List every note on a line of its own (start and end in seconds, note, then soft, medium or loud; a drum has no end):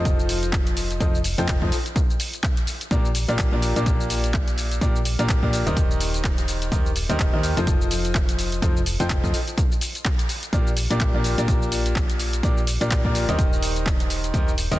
0.00 0.98 F1 medium
0.00 0.98 F3 medium
0.00 0.98 D#4 medium
0.00 0.98 F4 medium
0.00 0.98 A4 medium
0.00 0.98 C5 medium
0.00 0.98 D#5 loud
0.05 kick loud
0.05 closed hi-hat medium
0.05 shaker soft
0.20 shaker soft
0.29 open hi-hat loud
0.29 shaker medium
0.43 closed hi-hat medium
0.43 shaker soft
0.53 kick loud
0.53 clap loud
0.53 shaker soft
0.67 closed hi-hat medium
0.67 shaker soft
0.77 open hi-hat loud
0.77 shaker medium
0.91 closed hi-hat medium
0.91 shaker soft
1.00 1.35 F1 loud
1.00 1.16 F3 medium
1.00 1.16 D#4 medium
1.00 1.16 F4 medium
1.00 1.16 A4 medium
1.00 1.16 C5 medium
1.00 1.16 D#5 loud
1.00 kick loud
1.00 closed hi-hat medium
1.00 shaker soft
1.15 shaker soft
1.24 open hi-hat loud
1.24 shaker medium
1.38 1.59 F1 loud
1.38 1.58 F3 loud
1.38 1.58 D#4 medium
1.38 1.58 F4 medium
1.38 1.58 A4 medium
1.38 1.58 C5 medium
1.38 1.58 G5 loud
1.38 closed hi-hat medium
1.38 shaker soft
1.48 kick loud
1.48 clap loud
1.48 closed hi-hat medium
1.48 shaker soft
1.62 1.71 F1 loud
1.62 1.74 F3 medium
1.62 1.74 D#4 medium
1.62 1.74 F4 medium
1.62 1.74 A4 medium
1.62 1.74 C5 medium
1.62 1.74 D#5 medium
1.62 kick medium
1.72 open hi-hat loud
1.72 shaker medium
1.86 closed hi-hat medium
1.86 shaker soft
1.96 kick loud
1.96 closed hi-hat medium
1.96 shaker soft
2.10 shaker soft
2.20 open hi-hat loud
2.20 shaker medium
2.34 closed hi-hat medium
2.34 shaker soft
2.43 kick loud
2.43 clap loud
2.43 shaker soft
2.57 closed hi-hat medium
2.57 shaker soft
2.67 open hi-hat medium
2.67 shaker medium
2.81 closed hi-hat medium
2.81 shaker soft
2.91 3.26 A#1 loud
2.91 3.06 A#2 medium
2.91 3.06 D4 medium
2.91 3.06 F4 medium
2.91 3.06 G4 medium
2.91 3.06 A#4 medium
2.91 3.06 D5 loud
2.91 kick loud
2.91 closed hi-hat medium
2.91 shaker soft
3.05 shaker soft
3.15 open hi-hat loud
3.15 shaker medium
3.28 3.50 A#1 loud
3.28 3.48 A#2 loud
3.28 3.48 D4 medium
3.28 3.48 F4 medium
3.28 3.48 G4 medium
3.28 3.48 A#4 medium
3.28 3.48 D5 loud
3.28 closed hi-hat medium
3.28 shaker soft
3.39 kick loud
3.39 clap loud
3.39 closed hi-hat medium
3.39 shaker soft
3.52 3.73 A#1 loud
3.52 3.73 A#2 medium
3.52 3.73 D4 medium
3.52 3.73 F4 medium
3.52 3.73 G4 medium
3.52 3.73 A#4 medium
3.52 3.73 D5 loud
3.62 open hi-hat medium
3.62 shaker medium
3.76 4.79 A#1 medium
3.76 4.79 A#2 medium
3.76 4.79 D4 medium
3.76 4.79 F4 medium
3.76 4.79 G4 medium
3.76 4.79 A#4 medium
3.76 4.79 D5 loud
3.76 closed hi-hat medium
3.76 shaker soft
3.86 kick loud
3.86 closed hi-hat medium
3.86 shaker soft
4.01 shaker soft
4.10 open hi-hat loud
4.10 shaker medium
4.24 closed hi-hat medium
4.24 shaker soft
4.34 kick loud
4.34 clap loud
4.34 shaker soft
4.48 closed hi-hat medium
4.48 shaker soft
4.58 open hi-hat medium
4.58 shaker medium
4.71 closed hi-hat medium
4.71 shaker soft
4.81 5.16 A#1 loud
4.81 4.97 A#2 medium
4.81 4.97 D4 medium
4.81 4.97 F4 medium
4.81 4.97 G4 medium
4.81 4.97 A#4 medium
4.81 4.97 D5 loud
4.81 kick loud
4.81 closed hi-hat medium
4.81 shaker soft
4.96 shaker soft
5.05 open hi-hat loud
5.05 shaker medium
5.19 5.40 A#1 loud
5.19 5.39 A#2 medium
5.19 5.39 D4 medium
5.19 5.39 F4 medium
5.19 5.39 G4 medium
5.19 5.39 A#4 medium
5.19 5.39 D5 loud
5.19 closed hi-hat medium
5.19 shaker soft
5.29 kick loud
5.29 clap loud
5.29 closed hi-hat medium
5.29 shaker soft
5.43 5.64 A#1 loud
5.43 5.63 A#2 medium
5.43 5.63 D4 medium
5.43 5.63 F4 medium
5.43 5.63 G4 medium
5.43 5.63 A#4 medium
5.43 5.63 D5 loud
5.43 kick medium
5.53 open hi-hat medium
5.53 shaker medium
5.67 6.70 D#1 loud
5.67 6.69 D#3 medium
5.67 6.69 D#4 medium
5.67 6.69 G4 medium
5.67 6.69 A#4 medium
5.67 6.69 C5 medium
5.67 6.69 D#5 loud
5.67 closed hi-hat medium
5.67 shaker soft
5.77 kick loud
5.77 closed hi-hat medium
5.77 shaker soft
5.91 shaker soft
6.01 open hi-hat loud
6.01 shaker medium
6.14 closed hi-hat medium
6.14 shaker soft
6.24 kick loud
6.24 clap loud
6.24 shaker soft
6.38 closed hi-hat medium
6.38 shaker soft
6.48 open hi-hat medium
6.48 shaker medium
6.62 closed hi-hat medium
6.62 shaker soft
6.72 7.07 D#1 loud
6.72 6.87 D#3 medium
6.72 6.87 D#4 medium
6.72 6.87 G4 medium
6.72 6.87 A#4 medium
6.72 6.87 C5 medium
6.72 6.87 D#5 loud
6.72 kick loud
6.72 closed hi-hat medium
6.72 shaker soft
6.86 shaker soft
6.96 open hi-hat loud
6.96 shaker medium
7.09 7.31 D#1 loud
7.09 7.29 D#3 medium
7.09 7.29 D#4 medium
7.09 7.29 G4 medium
7.09 7.29 A#4 medium
7.09 7.29 C5 medium
7.09 7.29 D#5 loud
7.09 closed hi-hat medium
7.09 shaker soft
7.19 kick loud
7.19 clap loud
7.19 closed hi-hat medium
7.19 shaker soft
7.33 7.54 D#2 loud
7.33 7.54 D#3 medium
7.33 7.54 D#4 medium
7.33 7.54 G4 medium
7.33 7.54 A#4 medium
7.33 7.54 C5 medium
7.33 7.54 D#5 loud
7.43 open hi-hat medium
7.43 shaker medium
7.57 8.60 F1 loud
7.57 8.60 F3 medium
7.57 8.60 D#4 medium
7.57 8.60 F4 medium
7.57 8.60 A4 medium
7.57 8.60 C5 medium
7.57 8.60 D#5 loud
7.57 closed hi-hat medium
7.57 shaker soft
7.67 kick loud
7.67 closed hi-hat medium
7.67 shaker soft
7.82 shaker soft
7.91 open hi-hat loud
7.91 shaker medium
8.05 closed hi-hat medium
8.05 shaker soft
8.15 kick loud
8.15 clap loud
8.15 shaker soft
8.29 closed hi-hat medium
8.29 shaker soft
8.39 open hi-hat medium
8.39 shaker medium
8.52 closed hi-hat medium
8.52 shaker soft
8.62 8.97 F1 loud
8.62 8.78 F3 medium
8.62 8.78 D#4 medium
8.62 8.78 F4 medium
8.62 8.78 A4 medium
8.62 8.78 C5 medium
8.62 8.78 D#5 loud
8.62 kick loud
8.62 closed hi-hat medium
8.62 shaker soft
8.77 shaker soft
8.86 open hi-hat loud
8.86 shaker medium
9.00 9.21 F1 medium
9.00 9.20 F3 loud
9.00 9.20 D#4 medium
9.00 9.20 F4 medium
9.00 9.20 A4 medium
9.00 9.20 C5 medium
9.00 9.20 G5 loud
9.00 closed hi-hat medium
9.00 shaker soft
9.10 kick loud
9.10 clap loud
9.10 closed hi-hat medium
9.10 shaker soft
9.24 9.33 F1 loud
9.24 9.36 F3 medium
9.24 9.36 D#4 medium
9.24 9.36 F4 medium
9.24 9.36 A4 medium
9.24 9.36 C5 medium
9.24 9.36 D#5 medium
9.24 kick medium
9.24 shaker soft
9.34 open hi-hat medium
9.34 shaker medium
9.48 closed hi-hat medium
9.48 shaker soft
9.58 kick loud
9.58 closed hi-hat medium
9.58 shaker soft
9.72 shaker soft
9.81 open hi-hat loud
9.81 shaker medium
9.95 closed hi-hat medium
9.95 shaker soft
10.05 kick loud
10.05 clap loud
10.05 shaker soft
10.19 closed hi-hat medium
10.19 shaker soft
10.29 open hi-hat medium
10.29 shaker medium
10.43 closed hi-hat medium
10.43 shaker soft
10.53 10.88 A#1 loud
10.53 10.68 A#2 medium
10.53 10.68 D4 medium
10.53 10.68 F4 medium
10.53 10.68 G4 medium
10.53 10.68 A#4 medium
10.53 10.68 D5 loud
10.53 kick loud
10.53 closed hi-hat medium
10.53 shaker soft
10.67 shaker soft
10.77 open hi-hat loud
10.77 shaker medium
10.90 11.12 A#1 loud
10.90 11.10 A#2 loud
10.90 11.10 D4 medium
10.90 11.10 F4 medium
10.90 11.10 G4 medium
10.90 11.10 A#4 medium
10.90 11.10 D5 loud
10.90 closed hi-hat medium
10.90 shaker soft
11.00 kick loud
11.00 clap loud
11.00 closed hi-hat medium
11.00 shaker soft
11.14 11.35 A#1 loud
11.14 11.35 A#2 medium
11.14 11.35 D4 medium
11.14 11.35 F4 medium
11.14 11.35 G4 medium
11.14 11.35 A#4 medium
11.14 11.35 D5 loud
11.24 open hi-hat loud
11.24 shaker medium
11.38 12.41 A#1 loud
11.38 12.41 A#2 medium
11.38 12.41 D4 medium
11.38 12.41 F4 medium
11.38 12.41 G4 medium
11.38 12.41 A#4 medium
11.38 12.41 D5 loud
11.38 closed hi-hat medium
11.38 shaker soft
11.48 kick loud
11.48 closed hi-hat medium
11.48 shaker soft
11.62 shaker soft
11.72 open hi-hat loud
11.72 shaker medium
11.86 closed hi-hat medium
11.86 shaker soft
11.96 kick loud
11.96 clap loud
11.96 shaker soft
12.10 closed hi-hat medium
12.10 shaker soft
12.20 open hi-hat medium
12.20 shaker medium
12.33 closed hi-hat medium
12.33 shaker soft
12.43 12.78 A#1 loud
12.43 12.59 A#2 medium
12.43 12.59 D4 medium
12.43 12.59 F4 medium
12.43 12.59 G4 medium
12.43 12.59 A#4 medium
12.43 12.59 D5 loud
12.43 kick loud
12.43 closed hi-hat medium
12.43 shaker soft
12.58 shaker soft
12.67 open hi-hat loud
12.67 shaker medium
12.81 13.02 A#1 loud
12.81 13.01 A#2 medium
12.81 13.01 D4 medium
12.81 13.01 F4 medium
12.81 13.01 G4 medium
12.81 13.01 A#4 medium
12.81 13.01 D5 loud
12.81 closed hi-hat medium
12.81 shaker soft
12.91 kick loud
12.91 clap loud
12.91 closed hi-hat medium
12.91 shaker soft
13.05 13.26 A#1 loud
13.05 13.25 A#2 medium
13.05 13.25 D4 medium
13.05 13.25 F4 medium
13.05 13.25 G4 medium
13.05 13.25 A#4 medium
13.05 13.25 D5 loud
13.05 kick medium
13.15 open hi-hat loud
13.15 shaker medium
13.29 14.32 D#1 loud
13.29 14.31 D#3 medium
13.29 14.31 D#4 medium
13.29 14.31 G4 medium
13.29 14.31 A#4 medium
13.29 14.31 C5 medium
13.29 14.31 D#5 loud
13.29 closed hi-hat medium
13.29 shaker soft
13.39 kick loud
13.39 closed hi-hat medium
13.39 shaker soft
13.53 shaker soft
13.63 open hi-hat loud
13.63 shaker medium
13.76 closed hi-hat medium
13.76 shaker soft
13.86 kick loud
13.86 clap loud
13.86 shaker soft
14.00 closed hi-hat medium
14.00 shaker soft
14.10 open hi-hat loud
14.10 shaker medium
14.24 closed hi-hat medium
14.24 shaker soft
14.34 14.69 D#1 loud
14.34 14.49 D#3 medium
14.34 14.49 D#4 medium
14.34 14.49 G4 medium
14.34 14.49 A#4 medium
14.34 14.49 C5 medium
14.34 14.49 D#5 loud
14.34 kick loud
14.34 closed hi-hat medium
14.34 shaker soft
14.48 shaker soft
14.58 open hi-hat loud
14.58 shaker medium
14.71 14.79 D#1 loud
14.71 14.79 D#3 medium
14.71 14.79 D#4 medium
14.71 14.79 G4 medium
14.71 14.79 A#4 medium
14.71 14.79 C5 medium
14.71 14.79 D#5 loud
14.71 closed hi-hat medium
14.71 shaker soft